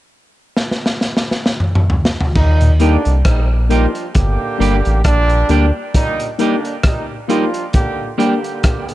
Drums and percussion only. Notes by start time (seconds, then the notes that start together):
0.57 snare
0.71 snare
0.86 snare
1.01 snare
1.17 snare
1.31 snare
1.46 snare
1.60 mid tom
1.75 mid tom
1.90 floor tom
2.05 snare
2.21 floor tom
2.35 kick, crash
2.61 closed hi-hat
2.80 closed hi-hat
3.05 closed hi-hat
3.25 kick, cross-stick, closed hi-hat
3.70 closed hi-hat
3.95 closed hi-hat
4.15 kick, closed hi-hat
4.61 closed hi-hat
4.85 closed hi-hat
5.04 kick, cross-stick, closed hi-hat
5.29 closed hi-hat
5.49 closed hi-hat
5.94 kick, closed hi-hat
6.20 closed hi-hat
6.39 closed hi-hat
6.65 closed hi-hat
6.83 kick, cross-stick, closed hi-hat
7.30 closed hi-hat
7.54 closed hi-hat
7.73 kick, closed hi-hat
8.20 closed hi-hat
8.44 closed hi-hat
8.63 kick, cross-stick, closed hi-hat
8.89 closed hi-hat